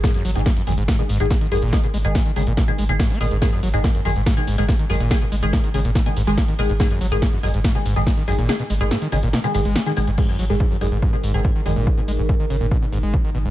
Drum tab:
CC |----------------|----------------|----------------|----------------|
RD |----------------|----------------|x-x-x-x-x-x-x-x-|x-x-x-x-x-x-x-x-|
HH |xxoxxxoxxxoxxxox|xxoxxxoxxxoxxxox|xxoxxxoxxxoxxxox|xxoxxxoxxxoxxxox|
SD |o---o---o---o---|o---o---o---o---|o---o---o---o---|o---o---o---o---|
BD |o---o---o---o---|o---o---o---o---|o---o---o---o---|o---o---o---o---|

CC |----------------|----------------|x---------------|----------------|
RD |x-x-x-x-x-x-x-x-|x-x-x-x-x-x-x-x-|----------------|----------------|
HH |xxoxxxoxxxoxxxox|xxoxxxoxxxoxxxox|--o---o---o---o-|--o---o---o---o-|
SD |o---o---o---o---|o---o---o---o---|----------------|----------------|
BD |o---o---o---o---|----------------|o---o---o---o---|o---o---o---o---|